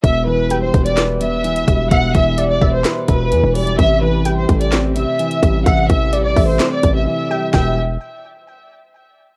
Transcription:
<<
  \new Staff \with { instrumentName = "Synth pluck" } { \time 4/4 \key e \minor \tempo 4 = 128 r4 g''2 r4 | e''4 d''8 e''4. r4 | r4 g''2 r4 | e''4 d''8 e''2 g''8 |
g''8 r2. r8 | }
  \new Staff \with { instrumentName = "Violin section" } { \time 4/4 \key e \minor e''8 b'8. c''8 d''16 r8 e''4. | fis''8 e''8. d''8 c''16 r8 b'4 d''8 | e''8 b'8. c''8 d''16 r8 e''4. | fis''8 e''8. d''8 c''8 d''8 e''16 e''4 |
e''8 r2. r8 | }
  \new Staff \with { instrumentName = "Grand piano" } { \clef bass \time 4/4 \key e \minor b,8 e8 g8 b8 b'8 b,8 e8 g8 | b,8 e8 g8 b8 b'8 b,8 e8 g8 | c8 e8 g8 a8 c'8 c8 e8 g8 | c8 e8 g8 a8 c'8 c8 e8 g8 |
<b, e g b>8 r2. r8 | }
  \new Staff \with { instrumentName = "808-style bass" } { \clef bass \time 4/4 \key e \minor e,,4. e,,2 e,,8 | e,,8 e,,4 e,,8 r8 e,,8 e,16 e,,8. | a,,4. a,,4~ a,,16 r8. a,,8 | a,,8 a,,4 a,,8 r8 a,,8 r4 |
e,,4 r2. | }
  \new DrumStaff \with { instrumentName = "Drums" } \drummode { \time 4/4 <hh bd>4 hh8 <hh bd>16 hh16 <hc hh sn>8 hh8 hh16 hh16 <hh bd>8 | <hh bd>8 <hh bd>8 hh8 bd8 <hc hh sn>8 <hh bd>8 hh8 <hh hho>16 hh16 | <hh bd>4 hh8 <hh bd>16 hh16 <hc hh sn>8 hh8 hh16 hh16 <hh bd>8 | <hh bd>8 <hh bd>8 hh8 <hho bd>8 <hc hh sn>8 <hh bd>8 r4 |
<bd sn>4 r4 r4 r4 | }
>>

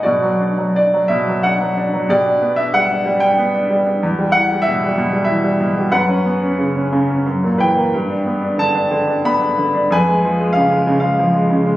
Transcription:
<<
  \new Staff \with { instrumentName = "Grand piano" } { \time 3/4 \key b \minor \tempo 4 = 92 << { d''4 d''8 e''8 fis''4 | d''8. e''16 fis''8. g''8. r8 | r8 fis''8 e''4 e''4 | fis''4 r4. g''8~ |
g''4 a''4 b''4 | gis''4 eis''8. eis''8. r8 | } \\ { fis'4. r4. | g'4. r4. | r2. | b'4. r4 b'8~ |
b'4 r2 | b'4. r4. | } >> }
  \new Staff \with { instrumentName = "Grand piano" } { \clef bass \time 3/4 \key b \minor b,16 fis16 d'16 fis16 d'16 fis16 b,16 fis16 d'16 fis16 d'16 fis16 | b,16 d'16 b16 d'16 g16 d'16 g16 d'16 b16 d'16 g16 d'16 | e,16 g16 e16 g16 b,16 g16 b,16 g16 e16 g16 b,16 g16 | fis,16 cis'16 b16 cis'16 cis16 cis'16 cis16 cis'16 fis,16 ais,16 e16 ais16 |
g,16 d'16 b16 d'16 d16 d'16 d16 d'16 b16 d'16 d16 d'16 | eis,16 gis16 eis16 gis16 cis16 gis16 cis16 gis16 eis16 gis16 cis16 gis16 | }
>>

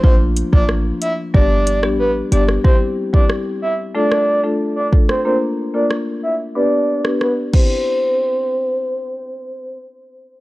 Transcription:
<<
  \new Staff \with { instrumentName = "Soft synth lead" } { \time 4/4 \key c \major \tempo 4 = 92 c''16 r8 d''16 r8 e''16 r16 d''8. r16 b'16 r16 d''16 r16 | c''16 r8 d''16 r8 e''16 r16 d''8. r8 d''16 r16 c''16 | c''16 r8 d''16 r8 e''16 r16 d''8. r16 b'16 r16 c''8~ | c''2. r4 | }
  \new Staff \with { instrumentName = "Marimba" } { \time 4/4 \key c \major <f bes d' f'>16 r8 <f bes d' f'>16 r4 <g b d' g'>16 r8 <g b d' g'>16 r8 <g b d' g'>16 r16 | <g c' e' g'>16 r8 <g c' e' g'>16 r4 <a d' f' a'>16 r8 <a d' f' a'>16 r8 <a d' f' a'>16 r16 | <bes d' f' bes'>16 r8 <bes d' f' bes'>16 r4 <b d' g' b'>16 r8 <b d' g' b'>16 r8 <c' e' g' c''>8~ | <c' e' g' c''>1 | }
  \new Staff \with { instrumentName = "808-style bass" } { \clef bass \time 4/4 \key c \major bes,,8. a,,8. r8 g,,8. a,,8. g,,8 | r1 | r1 | r1 | }
  \new DrumStaff \with { instrumentName = "Drums" } \drummode { \time 4/4 bd8 hh16 bd16 ss8 hh8 bd8 hh16 ss16 r8 hh16 ss16 | bd8. bd16 ss4 r16 ss8. r8 bd16 ss16 | r4 ss4 r8. ss16 ss8 <cymc bd>8 | r4 r4 r4 r4 | }
>>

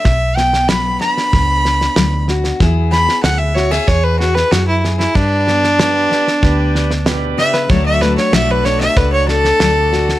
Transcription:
<<
  \new Staff \with { instrumentName = "Fiddle" } { \time 4/4 \key e \mixolydian \tempo 4 = 94 e''8 g''8 b''8 b''2 r8 | r8 b''8 fis''16 e''16 cis''16 e''16 cis''16 b'16 fis'16 b'16 fis'16 e'16 r16 e'16 | d'2. r8 e''16 b'16 | cis''16 e''16 b'16 cis''16 e''16 b'16 cis''16 e''16 b'16 cis''16 a'4. | }
  \new Staff \with { instrumentName = "Tonewheel organ" } { \time 4/4 \key e \mixolydian r1 | r1 | <g' b' d''>4 <g' b' d''>4 <g' b' d''>4 <g' b' d''>4 | <fis' a' d''>4 <fis' a' d''>4 <fis' a' d''>4 <fis' a' d''>4 | }
  \new Staff \with { instrumentName = "Steel-string acoustic guitar" } { \time 4/4 \key e \mixolydian << { r8 b4 d'2 fis'8 | <b e' gis'>8 e'4 fis'16 gis'4.~ gis'16 gis'8 | r8 b4 d'2~ d'8 | <fis a d' fis'>8 a4 d'2 fis'8 | } \\ { b,4 fis4 fis,4 fis4 | e4 b4 b,4 b4 | g,4 g4 d4 b,8 cis8 | d4 fis4 a,4 fis4 | } >> }
  \new Staff \with { instrumentName = "Fingered electric bass" } { \clef bass \time 4/4 \key e \mixolydian b,,2 cis,4 d,4 | e,4 d,4 e,4 fis,4 | g,2 d,2 | d,4 b,,4 cis,4 d,4 | }
  \new DrumStaff \with { instrumentName = "Drums" } \drummode { \time 4/4 <bd sn>8 sn16 sn16 <hhp sn>8 sn16 sn16 <bd sn>8 sn16 sn16 <hhp sn>8 sn16 sn16 | <bd sn>8 sn16 sn16 <hhp sn>8 sn16 sn16 <bd sn>8 sn16 sn16 <hhp sn>8 sn16 sn16 | <bd sn>8 sn16 sn16 <hhp sn>8 sn16 sn16 <bd sn>8 sn16 sn16 <hhp sn>8 sn16 sn16 | <bd sn>8 sn16 sn16 <hhp sn>8 sn16 sn16 <bd sn>8 sn16 sn16 <hhp sn>8 sn16 sn16 | }
>>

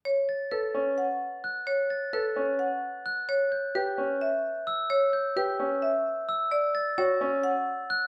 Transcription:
<<
  \new Staff \with { instrumentName = "Glockenspiel" } { \time 7/8 \key fis \phrygian \tempo 4 = 130 r8 a'''8 r2 fis'''8 | r8 a'''8 r2 fis'''8 | r8 g'''8 r2 e'''8 | r8 g'''8 r2 e'''8 |
r8 a'''8 r2 fis'''8 | }
  \new Staff \with { instrumentName = "Marimba" } { \time 7/8 \key fis \phrygian cis''8 r8 b'8 r8 fis''8 r4 | cis''8 r8 b'8 r8 fis''8 r4 | cis''8 r8 b'8 r8 e''8 r4 | cis''8 r8 b'8 r8 e''8 r4 |
d''8 r8 cis''8 r8 fis''8 r4 | }
  \new Staff \with { instrumentName = "Grand piano" } { \time 7/8 \key fis \phrygian r4 a'8 cis'8 r4. | r4 a'8 cis'8 r4. | r4 g'8 cis'8 r4. | r4 g'8 cis'8 r4. |
r4 fis'8 cis'8 r4. | }
>>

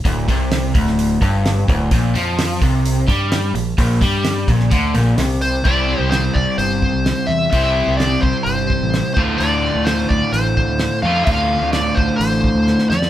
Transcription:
<<
  \new Staff \with { instrumentName = "Lead electric guitar" } { \time 4/4 \key c \mixolydian \tempo 4 = 128 r1 | r1 | r2. r8 c''8 | d''4 c''8 d''8 c''4. e''8 |
e''4 d''8 c''8 c''4. c''8 | d''4 c''8 d''8 c''4. f''8 | f''4 d''8 c''8 c''4. d''8 | }
  \new Staff \with { instrumentName = "Overdriven electric guitar" } { \clef bass \time 4/4 \key c \mixolydian d,8 c4 d,4 g,4 d,8 | bes,8 f4 c4 g4 bes,8 | bes,8 g4 bes,8 d8 bes,8 c4 | <c g c' e' g' c''>1 |
<c g c' e' g' c''>2.~ <c g c' e' g' c''>8 <d, a, d a f'>8~ | <d, a, d a f'>2.~ <d, a, d a f'>8 <d, a, d a f'>8~ | <d, a, d a f'>2.~ <d, a, d a f'>8 r8 | }
  \new Staff \with { instrumentName = "Fingered electric bass" } { \clef bass \time 4/4 \key c \mixolydian d,,8 c,4 d,,4 g,,4 d,,8 | bes,,8 f,4 c,4 g,4 bes,,8 | bes,,8 g,4 bes,,8 d,8 bes,,8 c,4 | c,8. c,8. c,16 r16 g,,8. c,8 r16 e,8 |
c,8. c,8. c,16 r16 g,,8. a,,8 r16 d,8 | d,8. d,8. d,16 r16 a,,8. d,8 r16 f,8 | d,8. d,8. d,16 r16 a,,8. d,8 r16 f,8 | }
  \new DrumStaff \with { instrumentName = "Drums" } \drummode { \time 4/4 <hho bd>8 <hho bd>8 <hho sn>8 <hho bd>16 sn16 hho8 <hho bd>8 <hho sn>8 <hho bd>8 | <hho bd>8 hho8 <hho sn>8 <hho bd>8 hho8 <hho bd>8 <hho sn>8 hho8 | <hho bd>8 <hho bd>8 <hho sn>8 <hho bd>16 sn16 <hho bd>8 hho8 <hho sn>8 hho8 | <hho bd>4 <hho sn>8 bd8 hho8 bd8 <hho sn>4 |
<hho bd>4 <hho sn>8 bd8 hho8 bd8 <hho sn>8 bd8 | hho4 <hho sn>8 bd8 hho8 bd8 <hho sn>4 | <hho bd>4 <hho sn>8 bd8 hho8 bd8 sn16 sn16 sn16 sn16 | }
>>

